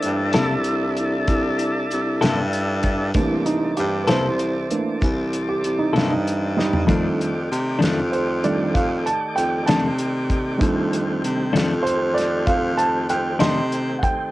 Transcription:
0.00 3.11 E3 soft
0.00 3.11 A3 soft
0.00 3.11 A#3 soft
0.00 0.31 C4 medium
0.00 3.11 D4 medium
0.00 3.11 D4 soft
0.00 3.11 E4 medium
0.00 3.11 A4 medium
0.00 closed hi-hat medium
0.04 0.33 G2 medium
0.33 1.25 C2 medium
0.33 0.54 C3 medium
0.33 0.54 A#3 medium
0.33 0.54 E4 medium
0.33 0.53 A4 medium
0.33 snare loud
0.33 closed hi-hat medium
0.64 closed hi-hat medium
0.97 closed hi-hat medium
1.28 1.87 C2 medium
1.28 kick medium
1.28 closed hi-hat medium
1.59 closed hi-hat medium
1.91 2.20 C2 medium
1.91 closed hi-hat medium
2.21 3.11 G2 medium
2.21 2.41 C3 medium
2.21 2.41 A#3 medium
2.21 2.40 E4 medium
2.21 2.40 A4 medium
2.21 snare loud
2.21 closed hi-hat medium
2.53 closed hi-hat soft
2.83 kick medium
2.83 closed hi-hat medium
3.14 3.73 C2 medium
3.14 4.04 E3 soft
3.14 6.85 E3 medium
3.14 4.04 A3 soft
3.14 4.04 A#3 soft
3.14 6.85 C4 medium
3.14 4.05 D4 soft
3.14 6.84 A4 medium
3.14 6.85 D5 medium
3.14 kick loud
3.14 closed hi-hat medium
3.46 3.76 D#4 medium
3.46 closed hi-hat medium
3.77 4.07 G2 medium
3.77 4.08 G4 medium
3.77 closed hi-hat medium
4.04 4.27 A4 medium
4.04 4.08 B4 soft
4.04 closed hi-hat medium
4.08 4.72 C2 medium
4.08 4.28 C3 medium
4.08 4.28 A#3 medium
4.08 4.27 E4 medium
4.08 5.45 C5 medium
4.08 snare loud
4.39 closed hi-hat medium
4.71 4.99 E3 soft
4.71 4.99 A3 soft
4.71 4.99 A#3 soft
4.71 4.99 D4 soft
4.71 closed hi-hat medium
5.02 5.60 C2 medium
5.02 kick medium
5.02 closed hi-hat medium
5.33 closed hi-hat medium
5.49 5.79 G4 medium
5.64 5.93 C2 medium
5.64 closed hi-hat medium
5.79 6.08 D#4 medium
5.93 6.85 G2 medium
5.93 6.14 C3 medium
5.93 6.13 A#3 medium
5.93 6.13 E4 medium
5.93 6.13 A4 medium
5.93 closed hi-hat medium
5.98 snare loud
6.09 6.55 D#4 medium
6.27 closed hi-hat medium
6.57 6.87 G3 medium
6.57 7.78 D#4 medium
6.57 snare medium
6.73 floor tom medium
6.87 7.06 F2 medium
6.87 7.47 F2 medium
6.87 7.07 D#3 medium
6.87 7.29 D#3 soft
6.87 7.30 G3 soft
6.87 7.07 A3 medium
6.87 7.30 A3 soft
6.87 7.30 D4 soft
6.87 7.07 D4 medium
6.87 kick loud
6.87 closed hi-hat medium
6.92 10.60 D#3 medium
6.92 10.60 A3 medium
6.92 10.59 G4 medium
6.92 10.60 D5 medium
7.21 closed hi-hat medium
7.51 7.79 C3 medium
7.51 closed hi-hat medium
7.79 8.00 F2 medium
7.79 8.00 D#3 medium
7.79 8.00 A3 medium
7.79 7.99 D4 medium
7.79 closed hi-hat medium
7.83 8.71 F2 medium
7.83 snare loud
8.12 8.42 C5 medium
8.12 closed hi-hat medium
8.43 8.71 D#3 soft
8.43 8.72 G3 soft
8.43 8.72 A3 soft
8.43 8.72 D4 soft
8.43 8.74 D5 medium
8.43 closed hi-hat soft
8.74 9.08 F2 medium
8.74 9.05 F5 medium
8.74 kick loud
8.74 closed hi-hat medium
9.06 9.36 A5 medium
9.06 closed hi-hat medium
9.36 9.66 F2 medium
9.36 9.66 G5 medium
9.36 closed hi-hat medium
9.66 10.57 C3 medium
9.66 9.87 D#3 medium
9.66 9.87 A3 medium
9.66 9.87 D4 medium
9.66 9.97 A5 medium
9.66 snare loud
9.66 closed hi-hat medium
9.70 9.88 F2 medium
9.98 closed hi-hat medium
10.30 kick medium
10.30 closed hi-hat medium
10.58 11.19 F2 medium
10.58 11.49 D#3 soft
10.58 11.49 G3 soft
10.58 11.49 A3 soft
10.58 11.49 D4 soft
10.58 14.30 G4 medium
10.58 kick loud
10.58 closed hi-hat medium
10.62 14.31 D#3 medium
10.62 14.31 A3 medium
10.62 14.31 C4 medium
10.93 closed hi-hat medium
11.24 11.52 C3 medium
11.24 closed hi-hat medium
11.53 12.44 F2 medium
11.53 11.73 F2 medium
11.53 11.73 D#3 medium
11.53 11.73 A3 medium
11.53 11.72 D4 medium
11.53 closed hi-hat medium
11.57 snare loud
11.83 12.14 C5 medium
11.87 closed hi-hat medium
12.14 12.46 D5 medium
12.14 closed hi-hat medium
12.19 snare soft
12.47 13.06 F2 loud
12.47 12.77 F5 medium
12.47 kick medium
12.47 closed hi-hat medium
12.78 13.08 A5 medium
12.78 closed hi-hat medium
13.09 13.38 F2 medium
13.09 13.40 G5 medium
13.09 closed hi-hat medium
13.39 13.60 F2 medium
13.39 14.03 C3 medium
13.39 13.59 D#3 medium
13.39 13.59 A3 medium
13.39 13.59 D4 medium
13.39 13.69 D#5 medium
13.39 13.71 C6 medium
13.39 snare loud
13.39 closed hi-hat medium
13.72 closed hi-hat medium
13.99 14.03 F#5 soft
13.99 kick medium
14.03 14.31 G5 medium
14.03 closed hi-hat medium

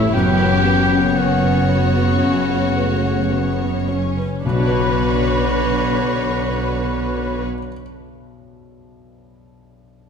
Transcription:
0.00 0.18 A2 medium
0.00 0.16 E3 soft
0.00 0.19 E3 soft
0.00 0.15 A3 soft
0.00 0.12 C#4 soft
0.00 0.65 C#4 soft
0.00 0.13 E4 medium
0.00 0.16 E4 soft
0.00 0.18 E4 soft
0.00 0.15 G4 soft
0.00 0.13 A4 medium
0.00 0.16 A4 soft
0.00 0.18 A4 soft
0.00 0.11 C#5 soft
0.00 0.15 C#5 soft
0.00 1.17 C#5 soft
0.00 0.13 E5 medium
0.00 0.15 E5 medium
0.00 0.19 E5 soft
0.00 0.18 A5 soft
0.12 4.14 F#1 soft
0.12 4.14 F#2 soft
0.12 2.18 F#2 soft
0.12 4.05 F#2 soft
0.12 3.98 C#3 soft
0.12 1.03 B3 soft
0.12 3.97 B3 soft
0.12 3.87 B3 medium
0.12 1.16 G4 medium
0.12 1.04 B4 soft
0.12 4.14 C#5 soft
0.12 1.19 G5 medium
0.40 3.30 C#3 soft
0.40 0.80 C#5 soft
0.65 3.03 C#4 soft
0.65 1.06 B4 soft
0.92 1.32 C#4 soft
0.92 1.43 B4 soft
1.17 1.65 C#4 soft
1.17 3.87 F#4 soft
1.17 1.58 C#5 soft
1.17 2.49 C#5 soft
1.17 3.87 F#5 soft
1.43 1.69 B4 soft
1.43 2.77 B4 soft
1.69 2.22 B3 soft
1.69 2.11 C#5 soft
1.69 2.22 B5 soft
1.95 2.38 B4 soft
1.95 5.86 C#6 soft
2.22 2.65 C#3 soft
2.22 2.76 C#4 soft
2.22 4.79 B5 soft
2.50 2.92 C#5 soft
2.50 4.72 C#5 soft
2.76 3.30 A3 soft
2.76 3.20 B4 soft
2.76 4.65 B4 soft
3.04 3.48 C#4 soft
3.04 3.59 C#4 soft
3.31 3.87 C#3 soft
3.31 3.87 B3 soft
3.31 3.76 C#5 soft
3.60 4.15 C#4 soft
3.60 3.87 B4 soft
3.87 4.49 C#3 soft
3.87 4.43 C#4 soft
3.87 4.33 C#5 soft
4.17 8.07 C#4 soft
4.17 4.44 B4 soft
4.42 7.45 B1 soft
4.42 7.44 B2 soft
4.42 8.35 B2 soft
4.42 7.42 D3 soft
4.42 7.44 D4 soft
4.42 7.45 F#4 soft
4.42 7.43 B4 medium
4.42 7.44 B4 soft
4.42 7.42 C#5 soft
4.42 7.44 C#5 soft
4.46 7.46 B5 soft
4.52 7.52 B2 soft
4.52 7.63 B3 soft
4.59 7.59 D4 soft
4.59 7.60 D4 soft
4.66 7.66 B4 soft
4.73 7.73 C#5 soft
4.80 7.80 B5 soft
4.80 7.81 B5 soft

